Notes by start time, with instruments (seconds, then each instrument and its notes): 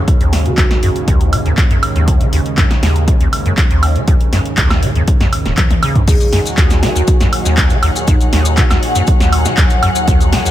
Already playing: analog synth pad D#2 G#2 C#3
0.08 kick, closed hi-hat
0.21 acid bass D#2, closed hi-hat
0.33 snare, open hi-hat
0.46 acid bass D#3, vibraphone F#4, closed hi-hat
0.58 acid bass D#2, kick, snare, clap, closed hi-hat
0.71 snare, closed hi-hat
0.83 acid bass F#2, open hi-hat
0.96 closed hi-hat
1.08 acid bass D#2, kick, closed hi-hat
1.21 closed hi-hat
1.33 acid bass D#3, open hi-hat, high woodblock
1.46 acid bass D#2, closed hi-hat
1.58 kick, clap, closed hi-hat
1.71 acid bass F#2, closed hi-hat
1.83 open hi-hat, high woodblock
1.96 acid bass D#2, closed hi-hat
2.08 kick, closed hi-hat
2.21 acid bass D#3, closed hi-hat
2.33 acid bass D#2, open hi-hat
2.46 closed hi-hat
2.58 acid bass F#2, kick, snare, clap, closed hi-hat
2.71 snare, closed hi-hat
2.83 acid bass D#2, snare, open hi-hat
2.96 closed hi-hat
3.08 acid bass D#3, kick, closed hi-hat
3.21 acid bass D#2, closed hi-hat
3.33 open hi-hat, high woodblock
3.46 acid bass F#2, closed hi-hat
3.58 kick, clap, closed hi-hat
3.71 acid bass D#2, closed hi-hat
3.83 open hi-hat, high woodblock
3.96 acid bass D#3, closed hi-hat
4.08 acid bass D#2, kick, closed hi-hat
4.21 closed hi-hat
4.33 acid bass F#2, snare, open hi-hat
4.46 closed hi-hat
4.58 acid bass D#2, kick, snare, clap, closed hi-hat
4.70 snare, closed hi-hat, high woodblock
4.83 acid bass D#3, open hi-hat
4.95 acid bass D#2, closed hi-hat
5.08 kick, closed hi-hat
5.20 acid bass F#2, snare, closed hi-hat
5.33 open hi-hat, high woodblock
5.46 acid bass D#1, snare, closed hi-hat
5.58 kick, clap, closed hi-hat, high tom
5.71 acid bass C#2, closed hi-hat, high tom
5.83 acid bass C#3, open hi-hat, high woodblock
5.95 acid bass D#2, kick, closed hi-hat, mid tom
6.08 acid bass D#2, analog synth pad D#2 A#2 F#3, string section D#4, vibraphone G#4, kick, closed hi-hat, crash, maracas
6.20 vibraphone G#4, closed hi-hat, maracas
6.33 acid bass F#2, string section G#4 F#5, snare, open hi-hat
6.44 string section C#5, closed hi-hat, maracas
6.58 acid bass D#2, kick, snare, clap, closed hi-hat, maracas
6.70 snare, closed hi-hat, maracas
6.83 acid bass D#3, vibraphone F#4, snare, open hi-hat
6.96 acid bass D#2, vibraphone F#4, closed hi-hat, maracas
7.07 kick, closed hi-hat, maracas
7.21 acid bass F#2, snare, closed hi-hat, maracas
7.33 open hi-hat, high woodblock
7.45 acid bass D#2, snare, closed hi-hat, maracas
7.57 kick, clap, closed hi-hat, maracas
7.70 acid bass D#3, closed hi-hat, maracas
7.83 acid bass D#2, open hi-hat, high woodblock
7.96 closed hi-hat, maracas
8.07 acid bass F#2, vibraphone D#4, kick, closed hi-hat, maracas
8.21 closed hi-hat, maracas
8.33 acid bass D#2, snare, open hi-hat
8.45 closed hi-hat, maracas
8.57 acid bass D#3, kick, snare, clap, closed hi-hat, maracas
8.71 acid bass D#2, snare, closed hi-hat, high woodblock, maracas
8.83 open hi-hat
8.95 acid bass F#2, closed hi-hat, maracas
9.07 kick, closed hi-hat, maracas
9.20 acid bass D#2, snare, closed hi-hat, maracas
9.33 open hi-hat, high woodblock
9.45 acid bass D#3, snare, closed hi-hat, maracas
9.57 acid bass D#2, kick, clap, closed hi-hat, maracas
9.70 closed hi-hat, maracas
9.83 acid bass F#2, open hi-hat, high woodblock
9.95 closed hi-hat, maracas
10.08 acid bass D#2, kick, closed hi-hat, maracas
10.21 closed hi-hat, maracas
10.33 acid bass D#3, snare, open hi-hat
10.45 acid bass D#2, closed hi-hat, maracas